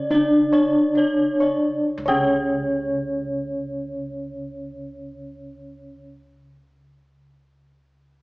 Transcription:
Already playing: bronze metallophone C#3 C#4, kettle gongs C#3, bansuri C#5
0.10 kettle gongs D4 D5, bronze metallophone D4 D5
0.53 kettle gongs C#5, bronze metallophone D5
0.95 bronze metallophone C#5, kettle gongs D5
1.40 kettle gongs C#5, bronze metallophone D5
1.98 kettle gongs C#2
2.06 bronze metallophone C#3 C#5, kettle gongs C#5
2.10 bronze metallophone C#4

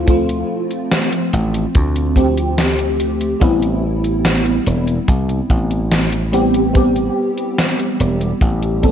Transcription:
Already playing: slap bass D2, fm electric piano F3 A3 C4 F4
0.07 fm electric piano F3 A3 C4 F4, kick, closed hi-hat
0.29 closed hi-hat
0.71 closed hi-hat
0.92 snare, closed hi-hat
1.13 closed hi-hat
1.33 slap bass A1, closed hi-hat
1.54 closed hi-hat
1.75 slap bass D2, kick, closed hi-hat
1.96 closed hi-hat
2.16 fm electric piano F3 A3 C4 G4, kick, closed hi-hat
2.37 closed hi-hat
2.58 snare, closed hi-hat
2.79 closed hi-hat
3.00 closed hi-hat
3.21 closed hi-hat
3.40 slap bass A1, fm electric piano G3 B3 C4 E4, kick, closed hi-hat
3.62 closed hi-hat
4.04 closed hi-hat
4.25 snare, closed hi-hat
4.46 closed hi-hat
4.67 slap bass E1, closed hi-hat
4.87 closed hi-hat
5.08 slap bass C2, kick, closed hi-hat
5.29 closed hi-hat
5.50 slap bass A1, kick, closed hi-hat
5.71 closed hi-hat
5.92 snare, closed hi-hat
6.12 closed hi-hat
6.33 fm electric piano G3 B3 C4 G4, closed hi-hat
6.54 closed hi-hat
6.74 fm electric piano G3 B3 C4 G4, kick, closed hi-hat
6.96 closed hi-hat
7.38 closed hi-hat
7.58 snare, closed hi-hat
7.79 closed hi-hat
8.00 slap bass E1, closed hi-hat
8.21 closed hi-hat
8.41 slap bass A1, kick, closed hi-hat
8.63 closed hi-hat
8.83 fm electric piano G3 B3 C4 A4, kick, closed hi-hat

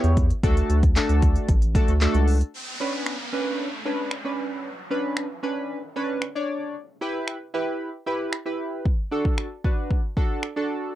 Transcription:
Already playing: synth keys B3 E4 G4 C#5
0.04 analog synth bass E2, closed hi-hat
0.17 kick, closed hi-hat
0.30 closed hi-hat
0.43 analog synth bass D2, synth keys A3 D4 F#4 A4, kick, closed hi-hat
0.57 closed hi-hat
0.70 analog synth bass D2, closed hi-hat
0.83 kick, closed hi-hat
0.96 synth keys A3 D4 F#4 A4, clap, closed hi-hat
1.09 analog synth bass D2, closed hi-hat
1.22 kick, closed hi-hat
1.36 closed hi-hat
1.48 analog synth bass A1, kick, closed hi-hat
1.62 closed hi-hat
1.75 synth keys A3 D4 F#4 A4, kick, closed hi-hat
1.88 analog synth bass D2, closed hi-hat
2.01 synth keys A3 D4 F#4 A4, clap, closed hi-hat
2.14 analog synth bass C#2, closed hi-hat
2.28 open hi-hat
2.41 closed hi-hat
2.54 downlifter
2.80 synth keys C#4 D4 B4
3.06 finger snap
3.33 synth keys C#4 D4 B4
3.85 synth keys C#4 D4 B4
4.11 finger snap
4.25 synth keys C#4 D4 B4
4.90 synth keys C#4 D4 B4
5.17 finger snap
5.43 synth keys C#4 D4 B4
5.96 synth keys C#4 D4 B4
6.22 finger snap
6.35 synth keys D4 C#5 D5
7.01 synth keys E4 G4 B4
7.28 finger snap
7.54 synth keys E4 G4 B4
8.06 synth keys E4 G4 B4
8.33 finger snap
8.46 synth keys E4 G4 B4
8.86 kick
9.11 synth keys D4 F#4 A4
9.25 kick
9.38 finger snap
9.64 synth keys D4 F#4 B4, kick
9.91 kick
10.17 synth keys D4 F#4 A4, kick
10.43 finger snap
10.56 synth keys D4 F#4 A4

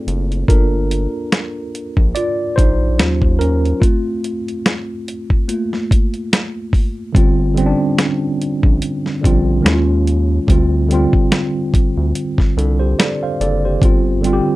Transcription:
Already playing: tine electric piano A3 C4 F4 A4
0.07 analog synth bass F#1, closed hi-hat
0.32 closed hi-hat
0.48 analog synth bass G1, tine electric piano A#3 D4 F4 A4 A#4, kick, closed hi-hat
0.91 closed hi-hat
1.32 finger snap, snare, closed hi-hat
1.75 closed hi-hat
1.97 analog synth bass A#1, kick
2.15 tine electric piano F4 D5, closed hi-hat
2.56 analog synth bass A#1, tine electric piano D#4 C5, kick, closed hi-hat
2.98 analog synth bass D#2, tine electric piano F#3 C#4 F4, finger snap, snare, closed hi-hat
3.22 kick
3.39 tine electric piano C#4 A#4, closed hi-hat
3.65 closed hi-hat
3.80 tine electric piano A3 C4 F4, kick, closed hi-hat
4.24 closed hi-hat
4.48 closed hi-hat
4.66 finger snap, snare, closed hi-hat
5.08 closed hi-hat
5.30 kick
5.48 tine electric piano A3 A#3 F4, closed hi-hat
5.73 snare
5.91 kick, closed hi-hat
6.14 closed hi-hat
6.33 finger snap, snare, closed hi-hat
6.73 kick, open hi-hat
7.13 analog synth bass G1, tine electric piano D3 G3 C4, kick, closed hi-hat
7.18 tine electric piano F4
7.54 tine electric piano D3 G3 C4, closed hi-hat
7.60 tine electric piano C#4
7.66 tine electric piano D4
7.98 finger snap, snare, closed hi-hat
8.42 closed hi-hat
8.63 analog synth bass A#1, kick
8.82 closed hi-hat
9.06 snare
9.21 analog synth bass A#1, tine electric piano D3 G3 C4, kick
9.25 tine electric piano F4, closed hi-hat
9.61 analog synth bass D#2, tine electric piano D#3 G#3 C#4
9.66 tine electric piano E4, finger snap, snare, closed hi-hat
9.73 tine electric piano F4
10.07 closed hi-hat
10.47 analog synth bass D2, tine electric piano D3 G3 C4, kick, closed hi-hat
10.52 tine electric piano F4
10.89 tine electric piano D3 G3 C4, closed hi-hat
10.94 tine electric piano F4
11.13 kick
11.32 finger snap, snare, closed hi-hat
11.74 kick, closed hi-hat
11.97 analog synth bass D2
12.15 closed hi-hat
12.38 kick, snare
12.57 analog synth bass C2, tine electric piano D4 A4, closed hi-hat
12.79 tine electric piano G4 C5
12.99 tine electric piano A4 D5, finger snap, snare, closed hi-hat
13.23 tine electric piano C5 F5
13.40 analog synth bass F#1, tine electric piano A4 D5, closed hi-hat
13.65 tine electric piano G4 C5
13.80 analog synth bass G1, tine electric piano D3 G3 C4, kick, closed hi-hat
13.85 tine electric piano F4
14.21 tine electric piano D3 G3 C4, closed hi-hat
14.27 tine electric piano F4
14.33 tine electric piano G4

